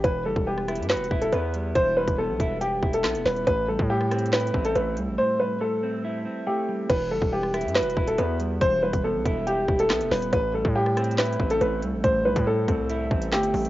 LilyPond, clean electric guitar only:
\new Staff \with { instrumentName = "Clean electric guitar" } { \time 4/4 \key e \minor \tempo 4 = 140 e8 g8 b8 e'8 fis'8 e'8 b8 g8 | e8 g8 b8 e'8 g'8 e'8 b8 g8 | a,8 g8 a8 c'8 e'8 c'8 a8 g8 | a,8 g8 a8 c'8 e'8 c'8 a8 g8 |
e8 g8 b8 e'8 fis'8 e'8 b8 g8 | e8 g8 b8 e'8 g'8 e'8 b8 g8 | a,8 g8 a8 c'8 e'8 c'8 a8 g8 | a,8 g8 a8 c'8 e'8 c'8 a8 g8 | }